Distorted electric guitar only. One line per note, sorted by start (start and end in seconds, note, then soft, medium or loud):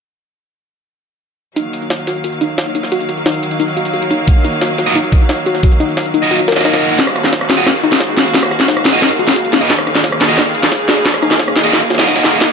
4.87 4.96 A#3 medium
4.87 4.96 F4 medium
4.87 4.96 F#4 medium
4.87 4.96 D#5 medium
6.22 6.37 A#3 medium
6.22 6.37 F4 medium
6.22 6.37 F#4 medium
6.22 6.37 D#5 loud
6.56 6.98 A#3 medium
6.56 6.98 F4 medium
6.56 6.98 F#4 medium
6.56 6.98 D#5 loud
7.58 7.67 A#3 medium
7.58 7.67 F4 medium
7.58 7.67 F#4 medium
7.58 7.67 D#5 medium
8.93 9.08 A#3 medium
8.93 9.08 F4 medium
8.93 9.08 F#4 medium
8.93 9.08 D#5 loud
9.61 9.71 A#3 medium
9.61 9.71 F4 medium
9.61 9.71 F#4 medium
9.61 9.71 D#5 medium
10.29 10.38 A#3 medium
10.29 10.38 F4 medium
10.29 10.38 F#4 medium
10.29 10.38 D#5 medium
11.64 11.79 A#3 medium
11.64 11.79 F4 medium
11.64 11.79 F#4 medium
11.64 11.79 D#5 loud
11.98 12.41 A#3 medium
11.98 12.41 F4 medium
11.98 12.41 F#4 medium
11.98 12.41 D#5 loud